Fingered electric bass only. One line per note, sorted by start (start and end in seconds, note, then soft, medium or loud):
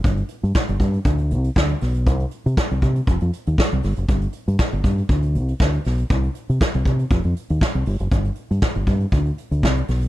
0.05 0.22 G1 loud
0.43 0.51 G2 medium
0.69 0.77 G1 medium
0.80 0.97 G2 loud
1.06 1.33 D2 loud
1.32 1.48 C2 loud
1.56 1.73 D2 loud
1.82 2.07 B1 loud
2.07 2.24 C2 loud
2.46 2.54 C3 loud
2.71 2.79 C2 loud
2.82 3.00 C3 loud
3.08 3.17 F1 loud
3.22 3.29 F2 loud
3.47 3.55 D#2 loud
3.73 3.80 C2 medium
3.84 3.93 G1 loud
3.97 4.05 F#1 medium
4.09 4.26 G1 loud
4.48 4.55 G2 loud
4.73 4.81 G1 medium
4.84 5.01 G2 loud
5.09 5.37 D2 medium
5.35 5.52 C2 medium
5.60 5.77 D2 medium
5.86 6.03 B1 loud
6.11 6.28 C2 loud
6.50 6.57 C3 medium
6.75 6.83 C2 loud
6.86 7.03 C3 loud
7.11 7.20 F1 loud
7.25 7.33 F2 loud
7.50 7.58 D#2 loud
7.75 7.83 C2 loud
7.87 7.96 G1 loud
8.00 8.08 F#1 medium
8.12 8.29 G1 medium
8.51 8.59 G2 medium
8.76 8.84 G1 medium
8.87 9.05 G2 loud
9.12 9.30 D2 loud
9.51 9.65 D2 medium
9.64 9.81 C2 loud
9.89 10.06 B1 medium